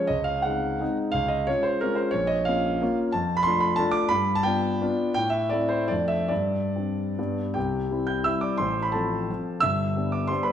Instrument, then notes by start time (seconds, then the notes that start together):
grand piano
0.07 C#2 D#5
0.24 F5
0.42 G#3 C4 D#4 F#5
0.80 G#3 C4 D#4
1.12 C#2 F5
1.28 D#5
1.47 G#3 C#4 F4 C#5
1.63 C5
1.81 G#3 C#4 F4 A#4
1.95 C5
2.11 A#1 C#5
2.27 D#5
2.45 A#3 C#4 F4 F5
2.82 A#3 C#4 F4
3.12 F2 A5
3.37 B5
3.43 A3 D4 F4 C6
3.60 B5
3.76 A3 D4 F4 A5
3.91 D6
4.09 G2 B5
4.35 A5
4.43 B3 D4 F4 G5
4.81 B3 D4 F4
5.14 A2 G5
5.30 E5
5.49 A3 C4 E4 D5
5.69 C5
5.88 F2 A3 C4 D4 D5
6.08 E5
6.28 G2 D5
6.76 G3 C4 D4
7.19 G2 G3 B3 D4
7.54 C2 C3 G4 G5
7.91 G3 C4 E4
8.07 G5 G6
8.24 G3 C4 E4 E5 E6
8.41 D5 D6
8.58 A1 A2 C5 C6
8.82 B5
8.92 F3 C4 F4 A4 A5
9.30 F3 C4 F4
9.60 G1 G2 E5 E6
9.96 G3 B3 D4
10.12 D5 D6
10.27 G3 B3 D4 C5 C6
10.43 B4 B5